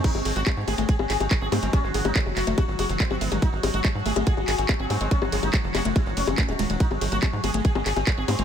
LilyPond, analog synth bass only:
\new Staff \with { instrumentName = "Analog synth bass" } { \clef bass \time 4/4 \tempo 4 = 142 r16 gis,,16 gis,,16 gis,,16 r16 gis,16 gis,,16 gis,,16 r16 gis,,16 gis,,16 gis,,16 r16 gis,,16 gis,16 gis,,16 | r16 gis,,16 gis,,16 gis,,16 r16 fis,,16 fis,,16 fis,,16 r16 gis,,16 fis,,16 fis,,16 r16 gis,,16 gis,,16 gis,,16 | r16 gis,,16 gis,,16 gis,,16 r16 gis,16 gis,,16 gis,,16 r16 gis,,16 gis,,16 gis,,16 r16 gis,,16 gis,16 gis,,16 | r16 gis,,16 gis,,16 gis,,16 r16 fis,,16 fis,,16 fis,,16 r16 gis,,16 fis,,16 fis,,16 r16 dis,,16 dis,,16 dis,,16 |
r16 gis,,16 gis,,16 gis,,16 r16 gis,16 gis,,16 gis,,16 r16 gis,,16 gis,,16 gis,,16 r16 gis,,16 gis,16 gis,,16 | }